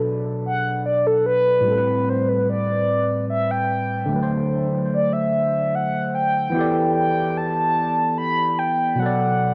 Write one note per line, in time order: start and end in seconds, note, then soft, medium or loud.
0.00 1.58 B2 medium
0.00 1.60 F#3 medium
0.00 1.62 D4 medium
0.00 1.67 A4 medium
0.46 0.82 F#5 loud
0.86 1.08 D5 medium
1.07 1.25 A4 medium
1.26 2.11 B4 medium
1.60 4.03 A2 medium
1.60 4.05 G3 medium
1.68 4.07 C4 medium
1.68 1.74 A4 medium
1.78 4.12 B4 medium
2.09 2.30 C5 medium
2.29 2.47 B4 medium
2.50 3.25 D5 loud
3.30 3.52 E5 medium
3.51 4.31 G5 loud
4.05 6.48 D3 medium
4.05 6.50 A3 medium
4.13 6.52 F#3 medium
4.13 4.19 B4 medium
4.23 6.57 C5 medium
4.93 5.14 D5 medium
5.13 5.77 E5 medium
5.75 6.14 F#5 loud
6.15 6.92 G5 medium
6.50 8.93 E3 medium
6.50 8.94 B3 medium
6.54 8.95 E4 medium
6.54 8.96 G4 medium
6.59 8.97 A4 medium
6.59 8.98 D5 medium
6.95 7.39 G5 medium
7.37 8.17 A5 loud
8.18 8.60 B5 loud
8.59 9.01 G5 medium
8.95 9.54 B2 medium
8.95 9.54 F#3 medium
8.99 9.54 A4 medium
8.99 9.54 F#5 medium
9.06 9.54 D5 medium